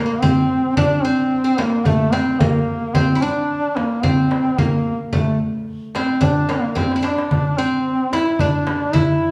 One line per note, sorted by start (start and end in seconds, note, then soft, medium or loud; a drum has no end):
0.00 0.23 A#3 medium
0.06 0.13 A#3 soft
0.22 0.76 C4 medium
0.22 0.77 C4 medium
0.22 frame drum medium
0.22 darbuka dum medium
0.37 darbuka ka soft
0.50 darbuka ka soft
0.77 1.05 D4 loud
0.77 1.04 D4 medium
0.77 frame drum medium
0.77 darbuka dum medium
0.91 darbuka ka soft
1.03 1.60 C4 medium
1.03 1.43 C4 medium
1.03 darbuka ka soft
1.32 darbuka ka soft
1.44 1.59 C4 medium
1.58 1.85 A#3 medium
1.58 1.87 A#3 medium
1.58 darbuka tek medium
1.58 frame drum medium
1.85 2.14 A3 medium
1.85 frame drum medium
1.85 darbuka dum medium
2.12 2.41 C4 medium
2.12 darbuka tek medium
2.12 frame drum medium
2.40 2.96 A#3 medium
2.40 2.97 A#3 medium
2.40 darbuka dum medium
2.40 frame drum medium
2.54 darbuka ka soft
2.68 darbuka ka soft
2.94 3.24 C4 medium
2.94 3.15 C4 medium
2.94 darbuka dum medium
2.94 frame drum medium
3.08 darbuka ka soft
3.15 3.22 E4 medium
3.22 3.78 D4 medium
3.22 4.03 D4 medium
3.22 darbuka ka soft
3.50 darbuka ka soft
3.77 4.06 A#3 medium
3.77 darbuka tek medium
3.77 frame drum medium
4.03 4.60 C4 medium
4.03 4.61 C4 loud
4.03 frame drum medium
4.03 darbuka dum medium
4.31 darbuka tek medium
4.31 frame drum medium
4.58 5.12 A#3 medium
4.58 4.98 A#3 medium
4.58 frame drum medium
4.58 darbuka dum medium
4.73 darbuka ka soft
4.86 darbuka ka soft
5.13 5.38 A3 medium
5.13 5.39 A3 medium
5.13 frame drum medium
5.13 darbuka dum medium
5.28 darbuka ka soft
5.41 darbuka ka soft
5.55 darbuka ka soft
5.68 darbuka ka soft
5.95 6.20 C4 medium
5.95 6.26 C4 medium
5.95 darbuka tek medium
5.95 frame drum medium
6.21 6.49 D4 medium
6.21 6.54 D4 loud
6.21 frame drum medium
6.21 darbuka dum medium
6.49 6.77 A#3 medium
6.49 6.78 A#3 medium
6.49 darbuka tek medium
6.49 frame drum medium
6.63 darbuka ka soft
6.75 6.95 C4 medium
6.75 7.06 C4 medium
6.75 darbuka tek medium
6.75 frame drum medium
6.92 darbuka ka medium
6.96 7.02 E4 medium
7.03 7.58 D4 medium
7.03 7.59 D4 medium
7.03 darbuka tek medium
7.18 darbuka ka medium
7.31 frame drum medium
7.31 darbuka dum medium
7.46 darbuka ka soft
7.58 8.12 C4 medium
7.58 8.13 C4 medium
7.58 darbuka ka soft
7.86 darbuka ka soft
8.13 8.40 E4 medium
8.13 8.42 E4 medium
8.13 darbuka tek medium
8.13 frame drum medium
8.39 8.96 D4 loud
8.39 8.93 D4 medium
8.39 frame drum medium
8.39 darbuka dum medium
8.67 darbuka tek medium
8.67 frame drum medium
8.93 9.31 E4 medium
8.93 darbuka dum medium
8.93 frame drum medium
9.08 darbuka ka soft
9.22 darbuka ka soft